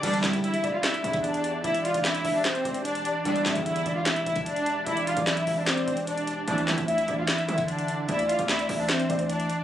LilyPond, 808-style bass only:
\new Staff \with { instrumentName = "808-style bass" } { \clef bass \time 4/4 \key e \phrygian \tempo 4 = 149 e,,8 e,16 e,,8. e,,8 r8 e,4. | e,,8. e,,8. e,,8 r8 e,,4 r8 | e,,8 e,16 e,8. e,,4 e,,4. | e,,8. b,,8. e,,4 e,,4. |
d,8 d16 d,8. d,8 r8 d4. | d,8. d,8. d,8 r8 d,4 r8 | }